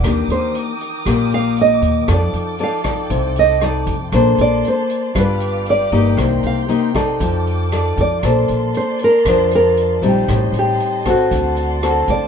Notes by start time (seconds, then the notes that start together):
Already playing: D5 D6
0.03 D#2 D#3 A#3 D4 G4 A#4 G5 D#6, kick, cross-stick, closed hi-hat
0.28 D#2 C5, closed hi-hat
0.55 closed hi-hat
0.81 closed hi-hat
1.06 A#1 A#2 A#3 G4, kick, cross-stick, closed hi-hat
1.32 F5, closed hi-hat
1.57 closed hi-hat
1.61 D#5
1.82 D#2, closed hi-hat
2.07 F2 F3 D#4 A4 D5 G5, kick, cross-stick, closed hi-hat
2.13 D5
2.33 F2, closed hi-hat
2.59 D#4 A4 D5, closed hi-hat
2.63 F5
2.84 D#4 A4 D5, kick, cross-stick, closed hi-hat
3.10 C2 C3, kick, closed hi-hat
3.36 D#5, closed hi-hat
3.61 D#4 A4 D5, cross-stick, closed hi-hat
3.87 F2, kick, closed hi-hat
4.12 A#1 A#3 D4 A4 C5 D5 A5 C6, kick, cross-stick, closed hi-hat
4.38 A#1 D5, closed hi-hat
4.65 C5, closed hi-hat
4.90 closed hi-hat
5.15 G1 G3 D4 F4 B4 F5 G5 D6, kick, cross-stick, closed hi-hat
5.19 B4
5.40 closed hi-hat
5.66 closed hi-hat
5.70 D5
5.92 G1 A#3 D#4 G4, closed hi-hat
6.17 C2 C3 A#4 C6, kick, cross-stick, closed hi-hat
6.43 C2 F5, closed hi-hat
6.69 A#3 D#4 G4, closed hi-hat
6.95 D#4 A4 D5, kick, cross-stick, closed hi-hat
7.20 F2 F3 A4 D6, kick, closed hi-hat
7.47 closed hi-hat
7.72 D#4 A4 D5, cross-stick, closed hi-hat
7.97 F2 D5, kick, closed hi-hat
8.22 A#1 A#3 D4 A4 C5 D5 A5 C6, kick, cross-stick, closed hi-hat
8.48 A#1, closed hi-hat
8.74 C5, closed hi-hat
8.99 closed hi-hat
9.04 A#4
9.25 F2 F3 D4 C5, kick, cross-stick, closed hi-hat
9.51 closed hi-hat
9.55 A#4
9.77 closed hi-hat
10.02 A#1 G3 C4 D#4, closed hi-hat
10.08 G4
10.26 A1 A2 D#5 G5 A5 C6, kick, cross-stick, closed hi-hat
10.52 A1, closed hi-hat
10.59 G4
10.80 closed hi-hat
11.06 C4 F#4 A4, kick, cross-stick, closed hi-hat
11.10 F#4
11.31 D2 D3 D5 F#5 C6, kick, closed hi-hat
11.57 closed hi-hat
11.83 C4 F#4 A4, cross-stick, closed hi-hat
12.08 D2 D5, kick, closed hi-hat